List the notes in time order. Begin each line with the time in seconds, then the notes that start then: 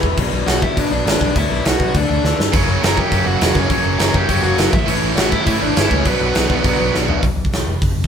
Already playing: E3 B3 E4 B4
0.03 E1, kick
0.17 B1 B2 F#3 B3 D4 F#4 B4, kick, crash
0.32 B1
0.47 B1 B2 F#3 B3 D4 F#4 B4 F#5, snare, crash
0.62 E4 E5, kick
0.76 B2 F#3 B3 D4 F#4 B4 D5, kick, crash
0.91 B1 D4 D5
1.05 A1 B2 F#3 B3 D4 F#4 B4 D5, snare, crash
1.21 B1, kick
1.35 D2 B2 F#3 B3 D4 E4 F#4 B4 E5, kick, crash
1.50 B1
1.65 B1 B2 F#3 B3 D4 F#4 B4 F#5, snare, crash
1.80 B1, kick
1.94 D2 D3 A3 D4 A4 D5, kick, crash
2.09 D2
2.23 D2 D3 A3 D4 A4, snare
2.39 G2, snare
2.52 F#1 F#2 C#3 F#3 A#3 C#4 F#4, kick, splash, crash
2.68 F#1
2.81 F#1 F#2 C#3 F#3 A#3 C#4 F#4 A#4, snare, crash
2.86 A#5
2.97 G4 G5, kick
3.09 F#2 C#3 F#3 A#3 C#4 F#4, kick, crash
3.26 F#1 F#4 F#5
3.39 E1 F#2 C#3 F#3 A#3 C#4 F#4, snare, crash
3.55 F#1 C#4 C#5, kick
3.69 A#1 F#2 C#3 F#3 A#3 C#4 F#4, kick, crash
3.86 F#1
3.98 F#1 F#2 C#3 F#3 A#3 C#4 F#4 A#4 A#5, snare, crash
4.14 F#1 G4 G5, kick
4.28 F#1 F#2 C#3 F#3 A#3 C#4 F#4, kick, crash
4.42 F#1 F#4 F#5
4.57 F#1 F#2 C#3 F#3 A#3 C#4 F#4, snare, crash
4.71 A1 E4 E5, kick
4.86 A1 A2 E3 A3 C#4 E4, crash
5.02 A1
5.17 A1 A2 E3 A3 C#4 E4 F#4 F#5, snare, crash
5.31 E4 E5, kick
5.46 A2 E3 A3 C#4 E4 E5, kick, crash
5.61 A1 D4 D5
5.74 G1 A2 E3 A3 C#4 E4, snare, crash
5.79 E4 E5
5.91 C#2 C#4 C#5, kick
6.03 B1 B2 F#3 B3 D4 F#4 B4, kick, crash
6.21 B1
6.33 B1 B2 F#3 B3 D4 F#4, snare, crash
6.50 B1, kick
6.63 B1 B2 F#3 B3 D4 F#4, kick, crash
6.81 B1
6.91 B1 B2 F#3 B3 D4 F#4, snare
7.08 B1, floor tom
7.23 B1, kick, open hi-hat
7.36 B1
7.45 kick
7.52 B1, snare, open hi-hat
7.67 F1
7.82 F#1, kick, open hi-hat
7.96 F#1